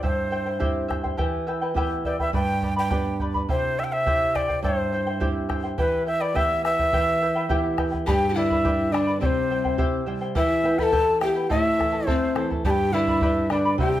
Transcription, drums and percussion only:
0, 0, Header, 1, 2, 480
1, 0, Start_track
1, 0, Tempo, 573066
1, 26, Time_signature, 2, 2, 24, 8
1, 11726, End_track
2, 0, Start_track
2, 0, Title_t, "Bombo"
2, 33, Note_on_c, 9, 43, 68
2, 116, Note_off_c, 9, 43, 0
2, 516, Note_on_c, 9, 43, 70
2, 600, Note_off_c, 9, 43, 0
2, 759, Note_on_c, 9, 37, 48
2, 759, Note_on_c, 9, 43, 52
2, 843, Note_off_c, 9, 37, 0
2, 843, Note_off_c, 9, 43, 0
2, 879, Note_on_c, 9, 43, 50
2, 963, Note_off_c, 9, 43, 0
2, 997, Note_on_c, 9, 43, 68
2, 1081, Note_off_c, 9, 43, 0
2, 1472, Note_on_c, 9, 43, 65
2, 1556, Note_off_c, 9, 43, 0
2, 1716, Note_on_c, 9, 43, 49
2, 1799, Note_off_c, 9, 43, 0
2, 1838, Note_on_c, 9, 43, 48
2, 1922, Note_off_c, 9, 43, 0
2, 1958, Note_on_c, 9, 43, 71
2, 2041, Note_off_c, 9, 43, 0
2, 2199, Note_on_c, 9, 43, 45
2, 2282, Note_off_c, 9, 43, 0
2, 2437, Note_on_c, 9, 43, 62
2, 2520, Note_off_c, 9, 43, 0
2, 2677, Note_on_c, 9, 43, 54
2, 2761, Note_off_c, 9, 43, 0
2, 2799, Note_on_c, 9, 43, 50
2, 2883, Note_off_c, 9, 43, 0
2, 2923, Note_on_c, 9, 43, 65
2, 3007, Note_off_c, 9, 43, 0
2, 3407, Note_on_c, 9, 43, 68
2, 3491, Note_off_c, 9, 43, 0
2, 3649, Note_on_c, 9, 37, 50
2, 3649, Note_on_c, 9, 43, 48
2, 3733, Note_off_c, 9, 37, 0
2, 3733, Note_off_c, 9, 43, 0
2, 3768, Note_on_c, 9, 43, 49
2, 3851, Note_off_c, 9, 43, 0
2, 3887, Note_on_c, 9, 43, 64
2, 3970, Note_off_c, 9, 43, 0
2, 4369, Note_on_c, 9, 43, 68
2, 4453, Note_off_c, 9, 43, 0
2, 4604, Note_on_c, 9, 37, 50
2, 4604, Note_on_c, 9, 43, 54
2, 4688, Note_off_c, 9, 37, 0
2, 4688, Note_off_c, 9, 43, 0
2, 4846, Note_on_c, 9, 43, 67
2, 4930, Note_off_c, 9, 43, 0
2, 5330, Note_on_c, 9, 43, 67
2, 5413, Note_off_c, 9, 43, 0
2, 5570, Note_on_c, 9, 37, 53
2, 5653, Note_off_c, 9, 37, 0
2, 5689, Note_on_c, 9, 43, 57
2, 5773, Note_off_c, 9, 43, 0
2, 5808, Note_on_c, 9, 43, 71
2, 5892, Note_off_c, 9, 43, 0
2, 6282, Note_on_c, 9, 43, 71
2, 6366, Note_off_c, 9, 43, 0
2, 6518, Note_on_c, 9, 37, 50
2, 6518, Note_on_c, 9, 43, 56
2, 6601, Note_off_c, 9, 37, 0
2, 6601, Note_off_c, 9, 43, 0
2, 6649, Note_on_c, 9, 43, 49
2, 6733, Note_off_c, 9, 43, 0
2, 6767, Note_on_c, 9, 43, 77
2, 6851, Note_off_c, 9, 43, 0
2, 7128, Note_on_c, 9, 43, 53
2, 7212, Note_off_c, 9, 43, 0
2, 7248, Note_on_c, 9, 43, 69
2, 7331, Note_off_c, 9, 43, 0
2, 7491, Note_on_c, 9, 37, 58
2, 7575, Note_off_c, 9, 37, 0
2, 7731, Note_on_c, 9, 43, 74
2, 7815, Note_off_c, 9, 43, 0
2, 8086, Note_on_c, 9, 43, 51
2, 8170, Note_off_c, 9, 43, 0
2, 8198, Note_on_c, 9, 43, 69
2, 8281, Note_off_c, 9, 43, 0
2, 8674, Note_on_c, 9, 43, 74
2, 8758, Note_off_c, 9, 43, 0
2, 9034, Note_on_c, 9, 43, 45
2, 9118, Note_off_c, 9, 43, 0
2, 9154, Note_on_c, 9, 43, 68
2, 9238, Note_off_c, 9, 43, 0
2, 9393, Note_on_c, 9, 37, 52
2, 9477, Note_off_c, 9, 37, 0
2, 9639, Note_on_c, 9, 43, 63
2, 9723, Note_off_c, 9, 43, 0
2, 9888, Note_on_c, 9, 37, 48
2, 9888, Note_on_c, 9, 43, 49
2, 9972, Note_off_c, 9, 37, 0
2, 9972, Note_off_c, 9, 43, 0
2, 10118, Note_on_c, 9, 43, 70
2, 10202, Note_off_c, 9, 43, 0
2, 10352, Note_on_c, 9, 37, 54
2, 10436, Note_off_c, 9, 37, 0
2, 10483, Note_on_c, 9, 43, 53
2, 10567, Note_off_c, 9, 43, 0
2, 10590, Note_on_c, 9, 43, 74
2, 10674, Note_off_c, 9, 43, 0
2, 10951, Note_on_c, 9, 43, 51
2, 11035, Note_off_c, 9, 43, 0
2, 11069, Note_on_c, 9, 43, 76
2, 11153, Note_off_c, 9, 43, 0
2, 11308, Note_on_c, 9, 37, 53
2, 11392, Note_off_c, 9, 37, 0
2, 11547, Note_on_c, 9, 43, 65
2, 11631, Note_off_c, 9, 43, 0
2, 11726, End_track
0, 0, End_of_file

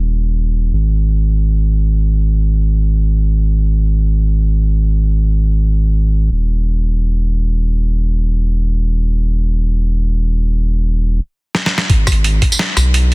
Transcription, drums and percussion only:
0, 0, Header, 1, 2, 480
1, 0, Start_track
1, 0, Key_signature, 5, "minor"
1, 0, Tempo, 500000
1, 12617, End_track
2, 0, Start_track
2, 0, Title_t, "Drums"
2, 11085, Note_on_c, 9, 38, 58
2, 11181, Note_off_c, 9, 38, 0
2, 11196, Note_on_c, 9, 38, 75
2, 11292, Note_off_c, 9, 38, 0
2, 11307, Note_on_c, 9, 38, 88
2, 11403, Note_off_c, 9, 38, 0
2, 11420, Note_on_c, 9, 36, 118
2, 11420, Note_on_c, 9, 42, 88
2, 11516, Note_off_c, 9, 36, 0
2, 11516, Note_off_c, 9, 42, 0
2, 11587, Note_on_c, 9, 37, 52
2, 11587, Note_on_c, 9, 42, 51
2, 11587, Note_on_c, 9, 54, 64
2, 11588, Note_on_c, 9, 36, 105
2, 11635, Note_off_c, 9, 42, 0
2, 11635, Note_on_c, 9, 42, 64
2, 11683, Note_off_c, 9, 37, 0
2, 11683, Note_off_c, 9, 54, 0
2, 11684, Note_off_c, 9, 36, 0
2, 11731, Note_off_c, 9, 42, 0
2, 11754, Note_on_c, 9, 42, 79
2, 11850, Note_off_c, 9, 42, 0
2, 11923, Note_on_c, 9, 36, 62
2, 11923, Note_on_c, 9, 42, 69
2, 12019, Note_off_c, 9, 36, 0
2, 12019, Note_off_c, 9, 42, 0
2, 12019, Note_on_c, 9, 54, 66
2, 12089, Note_on_c, 9, 38, 116
2, 12089, Note_on_c, 9, 42, 81
2, 12115, Note_off_c, 9, 54, 0
2, 12185, Note_off_c, 9, 38, 0
2, 12185, Note_off_c, 9, 42, 0
2, 12257, Note_on_c, 9, 37, 55
2, 12257, Note_on_c, 9, 42, 70
2, 12257, Note_on_c, 9, 54, 65
2, 12353, Note_off_c, 9, 37, 0
2, 12353, Note_off_c, 9, 42, 0
2, 12353, Note_off_c, 9, 54, 0
2, 12424, Note_on_c, 9, 42, 81
2, 12520, Note_off_c, 9, 42, 0
2, 12617, End_track
0, 0, End_of_file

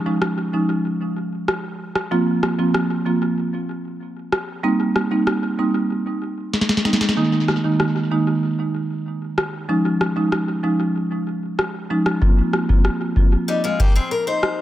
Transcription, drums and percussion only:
0, 0, Header, 1, 2, 480
1, 0, Start_track
1, 0, Tempo, 631579
1, 1606, Time_signature, 4, 2, 24, 8
1, 11108, End_track
2, 0, Start_track
2, 0, Title_t, "Drums"
2, 164, Note_on_c, 9, 37, 88
2, 240, Note_off_c, 9, 37, 0
2, 1126, Note_on_c, 9, 37, 85
2, 1202, Note_off_c, 9, 37, 0
2, 1485, Note_on_c, 9, 37, 83
2, 1561, Note_off_c, 9, 37, 0
2, 1846, Note_on_c, 9, 37, 81
2, 1922, Note_off_c, 9, 37, 0
2, 2085, Note_on_c, 9, 37, 88
2, 2161, Note_off_c, 9, 37, 0
2, 3286, Note_on_c, 9, 37, 91
2, 3362, Note_off_c, 9, 37, 0
2, 3767, Note_on_c, 9, 37, 80
2, 3843, Note_off_c, 9, 37, 0
2, 4005, Note_on_c, 9, 37, 92
2, 4081, Note_off_c, 9, 37, 0
2, 4966, Note_on_c, 9, 38, 49
2, 5026, Note_off_c, 9, 38, 0
2, 5026, Note_on_c, 9, 38, 51
2, 5086, Note_off_c, 9, 38, 0
2, 5086, Note_on_c, 9, 38, 65
2, 5146, Note_off_c, 9, 38, 0
2, 5146, Note_on_c, 9, 38, 62
2, 5206, Note_off_c, 9, 38, 0
2, 5206, Note_on_c, 9, 38, 81
2, 5267, Note_off_c, 9, 38, 0
2, 5267, Note_on_c, 9, 38, 70
2, 5327, Note_off_c, 9, 38, 0
2, 5327, Note_on_c, 9, 38, 90
2, 5386, Note_off_c, 9, 38, 0
2, 5386, Note_on_c, 9, 38, 79
2, 5462, Note_off_c, 9, 38, 0
2, 5687, Note_on_c, 9, 37, 85
2, 5763, Note_off_c, 9, 37, 0
2, 5926, Note_on_c, 9, 37, 92
2, 6002, Note_off_c, 9, 37, 0
2, 7127, Note_on_c, 9, 37, 93
2, 7203, Note_off_c, 9, 37, 0
2, 7607, Note_on_c, 9, 37, 80
2, 7683, Note_off_c, 9, 37, 0
2, 7845, Note_on_c, 9, 37, 88
2, 7921, Note_off_c, 9, 37, 0
2, 8806, Note_on_c, 9, 37, 85
2, 8882, Note_off_c, 9, 37, 0
2, 9165, Note_on_c, 9, 37, 85
2, 9241, Note_off_c, 9, 37, 0
2, 9285, Note_on_c, 9, 36, 107
2, 9361, Note_off_c, 9, 36, 0
2, 9525, Note_on_c, 9, 37, 79
2, 9601, Note_off_c, 9, 37, 0
2, 9647, Note_on_c, 9, 36, 89
2, 9723, Note_off_c, 9, 36, 0
2, 9763, Note_on_c, 9, 37, 90
2, 9839, Note_off_c, 9, 37, 0
2, 10003, Note_on_c, 9, 36, 93
2, 10079, Note_off_c, 9, 36, 0
2, 10484, Note_on_c, 9, 36, 98
2, 10560, Note_off_c, 9, 36, 0
2, 10966, Note_on_c, 9, 37, 94
2, 11042, Note_off_c, 9, 37, 0
2, 11108, End_track
0, 0, End_of_file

